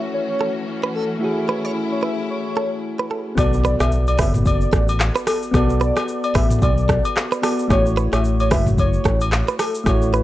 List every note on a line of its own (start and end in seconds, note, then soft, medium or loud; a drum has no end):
0.00 3.34 E3 medium
0.00 1.16 A3 medium
0.00 3.34 A3 medium
0.00 3.34 C#4 medium
0.00 1.17 E4 medium
0.00 1.18 F#4 medium
0.00 1.19 C#5 medium
0.14 0.54 C#5 loud
0.41 0.49 A4 medium
0.84 0.95 B4 medium
0.95 1.04 A4 medium
0.95 1.08 A4 medium
1.19 3.33 A3 medium
1.19 3.33 E4 medium
1.19 3.36 E4 medium
1.19 3.34 F#4 medium
1.24 3.35 G#4 medium
1.49 1.65 B4 medium
1.49 1.62 C#5 medium
1.65 1.71 C#5 medium
1.92 2.01 C#5 medium
2.03 2.11 B4 medium
2.03 2.16 E5 medium
2.30 2.70 C#5 medium
2.57 2.66 A4 medium
2.99 3.06 B4 medium
3.11 3.20 A4 medium
3.35 3.74 B1 loud
3.35 5.49 B3 medium
3.35 5.50 F#4 medium
3.35 5.50 A4 medium
3.35 3.51 D5 loud
3.35 kick loud
3.35 cross-stick medium
3.35 impact medium
3.35 high agogo medium
3.35 shaker medium
3.40 5.51 D5 medium
3.53 shaker medium
3.65 3.74 B4 medium
3.65 3.78 D5 medium
3.65 shaker medium
3.80 4.20 B1 loud
3.80 3.87 D5 medium
3.80 3.90 E5 medium
3.80 cross-stick loud
3.80 high agogo medium
3.80 shaker medium
3.92 shaker medium
4.07 4.18 D5 medium
4.07 high agogo medium
4.07 shaker medium
4.18 4.65 F#1 loud
4.18 4.28 B4 medium
4.18 4.32 E5 medium
4.18 kick loud
4.18 cross-stick loud
4.18 open hi-hat medium
4.18 shaker soft
4.34 mid tom medium
4.34 shaker loud
4.46 4.86 D5 loud
4.46 kick loud
4.46 high agogo medium
4.46 shaker medium
4.61 shaker soft
4.72 5.09 A1 loud
4.72 4.82 A4 medium
4.72 kick loud
4.72 cross-stick medium
4.72 shaker medium
4.88 high agogo medium
4.88 shaker medium
5.00 cross-stick medium
5.00 clap medium
5.00 low woodblock medium
5.00 shaker medium
5.16 5.22 B4 medium
5.16 shaker medium
5.27 5.36 A4 medium
5.27 5.40 A4 medium
5.27 cross-stick loud
5.27 open hi-hat medium
5.27 high agogo medium
5.27 shaker medium
5.43 shaker medium
5.51 5.90 B1 loud
5.51 7.38 B3 medium
5.51 7.39 F#4 medium
5.51 7.40 A4 medium
5.51 kick loud
5.51 cross-stick medium
5.51 high agogo medium
5.51 shaker medium
5.56 7.41 D5 medium
5.70 shaker medium
5.81 5.90 B4 medium
5.81 5.95 D5 medium
5.81 shaker medium
5.96 6.03 D5 medium
5.96 cross-stick loud
5.96 high agogo medium
5.96 shaker medium
6.08 shaker medium
6.24 6.34 D5 medium
6.24 high agogo medium
6.24 shaker medium
6.35 6.58 A1 loud
6.35 6.44 B4 medium
6.35 6.49 E5 medium
6.35 kick loud
6.35 cross-stick loud
6.35 open hi-hat medium
6.35 shaker soft
6.50 mid tom loud
6.50 shaker loud
6.62 6.98 B1 loud
6.62 7.03 D5 loud
6.62 kick loud
6.62 high agogo medium
6.62 shaker medium
6.78 shaker soft
6.89 6.98 A4 medium
6.89 kick medium
6.89 cross-stick medium
6.89 shaker medium
7.05 high agogo medium
7.05 shaker medium
7.17 cross-stick medium
7.17 clap medium
7.17 low woodblock medium
7.17 shaker medium
7.32 7.38 B4 medium
7.32 shaker medium
7.42 7.70 B3 medium
7.42 7.70 F#4 medium
7.42 7.52 A4 medium
7.42 7.70 A4 medium
7.42 7.71 D5 medium
7.42 cross-stick loud
7.42 open hi-hat medium
7.42 high agogo medium
7.42 shaker medium
7.59 shaker medium
7.68 8.07 A1 loud
7.68 9.81 A3 medium
7.68 9.82 E4 medium
7.68 9.83 F#4 medium
7.68 7.84 C#5 loud
7.68 kick loud
7.68 cross-stick loud
7.68 high agogo medium
7.68 shaker medium
7.73 9.84 C#5 medium
7.86 shaker medium
7.97 8.06 B4 medium
7.97 8.11 C#5 medium
7.97 shaker medium
8.13 8.53 A1 loud
8.13 8.19 C#5 medium
8.13 8.23 E5 medium
8.13 cross-stick loud
8.13 high agogo medium
8.13 shaker medium
8.24 shaker medium
8.40 8.50 C#5 medium
8.40 high agogo medium
8.40 shaker medium
8.51 8.98 F#1 loud
8.51 8.60 B4 medium
8.51 8.65 E5 medium
8.51 kick loud
8.51 cross-stick loud
8.51 open hi-hat medium
8.51 shaker soft
8.66 mid tom loud
8.66 shaker loud
8.78 9.19 C#5 loud
8.78 kick loud
8.78 high agogo medium
8.78 shaker medium
8.93 shaker soft
9.05 9.42 A1 loud
9.05 9.14 A4 medium
9.05 kick medium
9.05 cross-stick medium
9.05 shaker medium
9.21 high agogo medium
9.21 shaker medium
9.32 cross-stick medium
9.32 clap medium
9.32 low woodblock medium
9.32 shaker medium
9.48 9.55 B4 medium
9.48 shaker medium
9.59 9.68 A4 medium
9.59 9.73 A4 medium
9.59 cross-stick loud
9.59 open hi-hat medium
9.59 high agogo medium
9.59 shaker medium
9.75 shaker loud
9.84 10.23 A1 loud
9.84 10.23 A3 medium
9.84 10.23 E4 medium
9.84 10.23 F#4 medium
9.84 kick loud
9.84 cross-stick loud
9.84 high agogo medium
9.84 shaker medium
9.89 10.23 C#5 medium
10.02 shaker medium
10.13 10.23 B4 medium
10.13 shaker medium